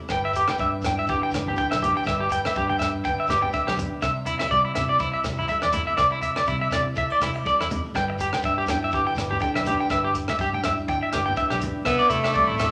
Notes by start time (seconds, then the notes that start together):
Already playing: E4 G4
0.08 G1 G3 B4 G5, kick, cross-stick, shekere
0.25 E5
0.33 G4 B4, closed hi-hat, shekere
0.48 G5, cross-stick, high conga
0.57 G2 D4 E5, kick, shekere
0.81 E4, cross-stick, closed hi-hat, low conga, shekere
0.86 G2 G5
0.99 E5
1.07 G1 D3 G4 B4, kick, shekere
1.23 G5
1.31 B4, cross-stick, closed hi-hat, high conga, shekere
1.36 G1
1.46 G4, low conga, shekere
1.56 B4 G5, muted nylon-string guitar stroke, kick, shekere
1.71 B1 E5, cross-stick
1.81 G4, closed hi-hat, high conga, low conga, shekere
1.94 G5, shekere
2.04 G1 G3 B4 E5, kick, cross-stick, shekere
2.20 G4
2.30 B4 G5, closed hi-hat, shekere
2.43 E5, cross-stick, high conga, shekere
2.54 G2 D4 G4, kick, shekere
2.70 G5, high conga
2.79 G2 E5, cross-stick, closed hi-hat, low conga, shekere
3.04 G1 D3 B4 G5, kick, shekere
3.20 E5
3.27 G1 G4 B4, cross-stick, closed hi-hat, high conga, shekere
3.41 G5, low conga, shekere
3.53 D4 B4 E5, kick, shekere
3.67 B1 G4, cross-stick, high conga
3.76 closed hi-hat, high conga, low conga, shekere
4.02 C2 C3 C5 E5, kick, cross-stick, shekere
4.26 E4, closed hi-hat, shekere
4.39 G4 E5, cross-stick, high conga
4.51 C3 G3 D5, kick, shekere
4.65 E4
4.75 C3 E4 E5, cross-stick, closed hi-hat, low conga, shekere
4.89 D5
4.99 C2 C3 E4 C5, kick, shekere
5.14 E5
5.24 C2 G4, cross-stick, closed hi-hat, high conga, shekere
5.37 E4, low conga, shekere
5.48 G3 A4 E5, kick, shekere
5.62 E2 D5, cross-stick
5.72 E4, closed hi-hat, high conga, low conga, shekere
5.87 E5, shekere
5.97 C2 C3 C5 D5, kick, cross-stick, shekere
6.12 E4
6.22 E5, muted nylon-string guitar stroke, closed hi-hat, shekere
6.36 D5, cross-stick, high conga
6.46 C3 G3 E4, kick, shekere
6.61 E5
6.71 E4 D5, cross-stick, closed hi-hat, low conga, shekere
6.75 C3
6.95 C2 C3 A4 E5, kick, shekere
7.10 C5 D5
7.19 E4, cross-stick, closed hi-hat, high conga, shekere
7.24 C2
7.33 G4, muted clean electric guitar stroke, shekere
7.45 G3 A4 D5, kick, shekere
7.60 E2 E4, cross-stick
7.70 closed hi-hat, high conga, low conga, shekere
7.85 shekere
7.94 G1 G3 B4 G5, kick, cross-stick, shekere
8.10 muted clean electric guitar stroke
8.18 G4 B4, closed hi-hat, shekere
8.33 G5, cross-stick, high conga
8.41 G2 D4, kick, shekere
8.45 E5
8.58 G4
8.66 G2 E4 G5, cross-stick, closed hi-hat, low conga, shekere
8.84 E5
8.91 G1 D3 G4 B4, kick, shekere
9.07 G5
9.15 G1 B4, cross-stick, closed hi-hat, high conga, shekere
9.29 G4, low conga, shekere
9.39 D4 A4 G5, kick, shekere
9.54 B1 B4 E5, cross-stick
9.65 G4, closed hi-hat, high conga, low conga, shekere
9.78 G5, shekere
9.90 G1 G3 B4 E5, kick, cross-stick, shekere
10.04 G4
10.14 muted nylon-string guitar stroke, closed hi-hat, shekere
10.28 E5, cross-stick, high conga
10.39 G2 D4 G4, kick, shekere
10.54 G5, high conga
10.63 G2 E4 E5, cross-stick, closed hi-hat, low conga, shekere
10.77 shekere
10.87 G1 G5, muted nylon-string guitar stroke, kick, shekere
11.03 E5
11.13 G1 G4 B4, cross-stick, closed hi-hat, high conga, shekere
11.25 G5, low conga, shekere
11.36 D4 B4 E5, kick, shekere
11.50 B1 G4, cross-stick, high conga
11.60 closed hi-hat, high conga, low conga, shekere
11.85 C2 C3 B3 E5, kick, cross-stick, shekere
11.99 D5
12.09 C3 A3 E4, closed hi-hat, shekere
12.13 G4
12.24 E5, cross-stick
12.33 D5, kick, shekere
12.37 G3
12.47 A1 E4, high conga
12.58 E4 E5, cross-stick, closed hi-hat, low conga, shekere